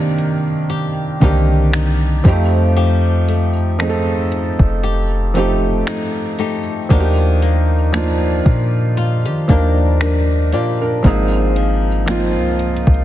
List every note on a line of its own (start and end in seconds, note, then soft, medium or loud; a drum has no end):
0.00 2.36 C3 medium
0.00 1.27 D#3 medium
0.00 1.20 A#3 medium
0.00 1.21 A#3 medium
0.00 1.22 C4 medium
0.00 1.24 D4 medium
0.00 1.22 D#4 medium
0.00 2.27 D#4 medium
0.00 0.69 G4 medium
0.00 1.25 G4 medium
0.00 2.27 C5 medium
0.18 closed hi-hat medium
0.70 1.22 G4 medium
0.70 closed hi-hat medium
1.20 2.21 C2 loud
1.20 1.28 D3 medium
1.20 2.25 A#3 medium
1.20 2.36 A#3 medium
1.20 2.24 C4 medium
1.20 2.26 D4 medium
1.20 1.73 D#4 medium
1.20 2.77 G4 medium
1.20 kick medium
1.20 closed hi-hat medium
1.25 2.28 D#3 medium
1.25 2.26 G4 medium
1.73 2.79 D#4 medium
1.73 finger snap loud
1.73 closed hi-hat medium
2.24 4.56 F2 loud
2.24 3.50 F3 medium
2.24 2.75 F3 medium
2.24 2.32 G3 medium
2.24 3.51 C4 medium
2.24 3.52 D#4 medium
2.24 kick loud
2.24 closed hi-hat medium
2.28 3.54 A3 medium
2.28 3.52 G4 loud
2.76 6.90 F3 medium
2.76 4.83 G4 medium
2.76 closed hi-hat medium
3.28 5.34 A3 medium
3.28 closed hi-hat medium
3.79 5.03 F3 medium
3.79 5.03 A3 medium
3.79 5.04 C4 medium
3.79 5.36 D#4 medium
3.79 5.04 D#4 medium
3.79 finger snap loud
3.79 closed hi-hat medium
3.83 3.89 G#4 medium
3.90 5.08 A4 medium
4.32 closed hi-hat medium
4.59 5.83 F1 loud
4.59 kick medium
4.83 5.36 G4 medium
4.83 closed hi-hat medium
5.34 6.58 F3 medium
5.34 6.58 A3 medium
5.34 6.38 A3 medium
5.34 6.59 C4 medium
5.34 5.87 D#4 medium
5.34 6.59 D#4 medium
5.34 6.39 G4 medium
5.34 closed hi-hat medium
5.38 6.60 G4 medium
5.87 6.39 D#4 medium
5.87 finger snap loud
5.87 closed hi-hat medium
6.39 7.02 A3 medium
6.39 7.94 D#4 medium
6.39 6.91 G4 medium
6.39 closed hi-hat medium
6.89 8.42 D#2 loud
6.89 11.04 D#3 medium
6.89 7.73 F3 medium
6.89 7.73 A#3 medium
6.89 7.74 D4 medium
6.89 7.74 D#4 medium
6.89 8.97 G4 medium
6.89 kick loud
6.89 closed hi-hat medium
6.94 6.99 F#4 medium
7.00 7.78 G4 medium
7.42 9.49 A#3 medium
7.42 closed hi-hat medium
7.92 9.16 F3 medium
7.92 9.17 A#3 medium
7.92 9.49 D4 medium
7.92 9.18 D4 medium
7.92 9.18 D#4 medium
7.92 finger snap loud
7.92 closed hi-hat medium
7.97 9.19 F4 medium
8.46 9.27 A#2 loud
8.46 kick loud
8.46 closed hi-hat medium
8.97 9.25 F4 medium
8.97 closed hi-hat medium
9.25 9.48 D#3 medium
9.25 9.49 G4 medium
9.48 10.54 D#2 loud
9.48 10.72 F3 medium
9.48 10.72 A#3 medium
9.48 10.52 A#3 medium
9.48 10.00 D4 medium
9.48 10.01 D4 medium
9.48 10.02 D#4 medium
9.48 10.53 G4 medium
9.48 kick medium
9.48 closed hi-hat medium
9.52 10.00 A#4 medium
10.01 10.52 D4 medium
10.01 10.51 D4 medium
10.01 10.50 A#4 medium
10.01 finger snap loud
10.01 closed hi-hat medium
10.52 11.02 A#2 medium
10.52 12.07 A#3 medium
10.52 11.04 D4 medium
10.52 10.80 F4 medium
10.52 11.16 G4 medium
10.52 10.79 D5 medium
10.52 closed hi-hat medium
10.81 11.30 D4 medium
10.81 11.30 A#4 medium
11.03 12.38 G#1 loud
11.03 13.04 G#2 medium
11.03 11.86 F3 medium
11.03 11.87 A#3 medium
11.03 13.04 C4 medium
11.03 11.88 C4 medium
11.03 11.88 D#4 medium
11.03 kick loud
11.03 closed hi-hat medium
11.07 11.89 G#4 loud
11.56 13.04 F3 medium
11.56 closed hi-hat medium
12.06 13.04 F3 medium
12.06 13.04 A#3 medium
12.06 13.04 C4 medium
12.06 13.04 D#4 medium
12.06 finger snap loud
12.06 closed hi-hat medium
12.11 13.04 F4 loud
12.36 12.85 C2 medium
12.59 closed hi-hat medium
12.77 closed hi-hat medium
12.87 13.04 C2 loud
12.87 kick medium
12.94 closed hi-hat soft